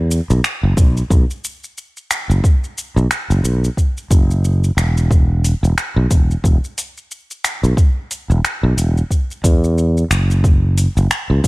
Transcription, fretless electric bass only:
0.00 0.19 E2 medium
0.30 0.39 B1 loud
0.63 0.73 F#1 loud
0.77 1.01 B1 medium
1.10 1.23 B1 loud
2.30 2.39 F#1 loud
2.96 3.06 B1 loud
3.30 3.39 F#1 loud
3.44 3.68 B1 medium
4.11 4.70 F#1 medium
4.77 5.53 E1 medium
5.63 5.72 E1 loud
5.96 6.06 B1 loud
6.44 6.57 E1 loud
7.63 7.73 B1 medium
8.30 8.39 E1 loud
8.63 8.73 B1 loud
8.77 9.01 E1 medium
9.44 10.03 E2 loud
10.11 10.86 F#1 loud
10.97 11.06 F#1 loud
11.30 11.39 C#2 medium
11.44 11.47 F#1 medium

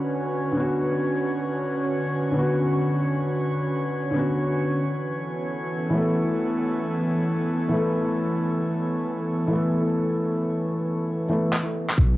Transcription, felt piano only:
0.00 0.50 D3 medium
0.00 0.53 B3 medium
0.00 0.55 C#4 medium
0.00 0.56 F#4 medium
0.52 2.30 D3 medium
0.52 2.32 B3 medium
0.57 2.34 C#4 medium
0.57 2.35 F#4 medium
2.31 4.09 D3 medium
2.31 4.11 B3 medium
2.37 4.13 C#4 medium
2.37 4.14 F#4 medium
4.11 4.79 D3 medium
4.11 4.80 B3 medium
4.16 4.81 C#4 medium
4.16 4.83 F#4 medium
5.90 7.67 E3 medium
5.90 7.69 A3 medium
5.95 7.71 B3 medium
5.95 7.72 A4 medium
7.68 9.46 E3 medium
7.68 9.48 A3 medium
7.74 9.50 B3 medium
7.74 9.51 A4 medium
9.47 11.26 E3 medium
9.47 11.28 A3 medium
9.52 11.29 B3 medium
9.52 11.30 A4 medium
11.28 11.52 E3 medium
11.28 11.52 A3 medium
11.28 11.53 B3 medium
11.28 11.54 A4 medium

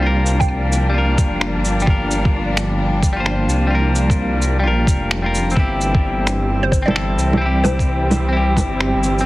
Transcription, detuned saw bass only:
0.00 1.19 C2 medium
1.18 1.54 F1 medium
1.56 1.86 G1 medium
1.87 3.47 G1 medium
3.48 4.65 C2 medium
4.64 4.86 A#1 loud
4.87 5.55 F1 medium
5.57 7.17 G1 loud
7.17 8.58 C2 medium
8.57 8.93 G1 medium
8.94 9.25 G1 medium

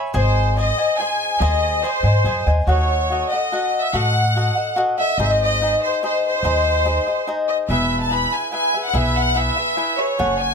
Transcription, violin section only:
0.14 0.54 C5 medium
0.57 0.96 D#5 medium
0.99 1.41 G#5 medium
1.42 1.83 D#5 medium
1.86 2.48 C5 medium
2.68 3.27 C#5 medium
3.32 3.80 D#5 medium
3.81 3.94 E5 medium
3.94 4.77 F#5 medium
4.98 5.17 E5 medium
5.18 5.24 D#5 medium
5.25 5.30 E5 medium
5.31 5.41 D#5 medium
5.42 5.80 D#5 loud
5.84 6.02 C5 medium
6.03 6.22 C5 medium
6.26 7.25 C5 loud
7.48 7.58 D#5 medium
7.69 7.98 E5 medium
8.02 8.12 A5 medium
8.14 8.33 B5 medium
8.35 8.53 G#5 medium
8.54 8.82 G#5 medium
8.86 8.95 F#5 medium
8.98 9.17 E5 medium
9.17 9.37 F#5 loud
9.37 9.99 E5 loud
9.98 10.40 C#5 medium
10.40 10.54 G#5 medium

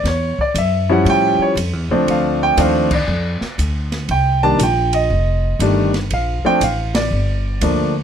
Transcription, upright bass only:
0.04 0.35 E2 medium
0.38 muted upright bass stroke soft
0.54 1.04 F#2 medium
1.05 1.37 A2 medium
1.39 muted upright bass stroke soft
1.55 1.73 F2 medium
1.73 1.89 E2 medium
1.89 2.06 C#2 medium
2.07 2.56 D2 medium
2.57 3.06 D#2 medium
3.08 3.39 F2 medium
3.41 muted upright bass stroke soft
3.58 4.07 D2 medium
4.09 4.58 C2 medium
4.59 5.08 A#1 loud
5.10 5.59 F1 medium
5.59 6.09 G1 medium
6.11 6.42 A#1 medium
6.44 muted upright bass stroke soft
6.61 7.10 A1 medium
7.11 7.60 G1 medium
7.61 8.03 D2 medium

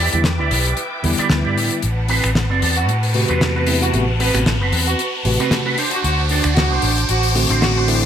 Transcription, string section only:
0.00 1.82 B4 medium
0.00 1.82 E5 medium
0.00 1.82 G5 medium
0.00 1.82 D6 medium
1.83 5.74 B4 medium
1.83 8.05 F#5 medium
1.83 8.05 A5 medium
5.78 8.05 C5 medium
5.78 8.05 D6 medium

